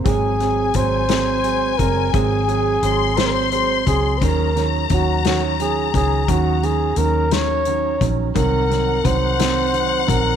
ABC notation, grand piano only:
X:1
M:6/8
L:1/8
Q:3/8=58
K:Abmix
V:1 name="Grand piano" clef=bass
[G,A,C] [G,A,C] [G,A,C] [G,A,C] [G,A,C] [G,A,C] | [G,A,C] [G,A,C] [G,A,C] [G,A,C] [G,A,C] [G,A,C] | [E,G,D] [E,G,D] [E,G,D] [E,G,D] [E,G,D] [E,G,D] | [E,G,D] [E,G,D] [E,G,D] [E,G,D] [E,G,D] [E,G,D] |
[E,G,C] [E,G,C] [E,G,C] [E,G,C] [E,G,C] [E,G,C] |]